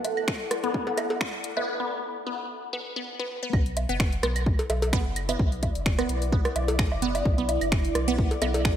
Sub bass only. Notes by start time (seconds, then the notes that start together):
Already playing: B1
0.17 F#1
0.51 B1
0.98 B1
1.33 B1
3.53 B1
3.89 F#1
4.23 B1
4.70 B1
5.06 F#1
5.39 B1
5.75 F#1
6.09 B1
6.56 B1
6.92 F#1
7.25 B1
7.61 F#1
7.95 B1
8.42 B1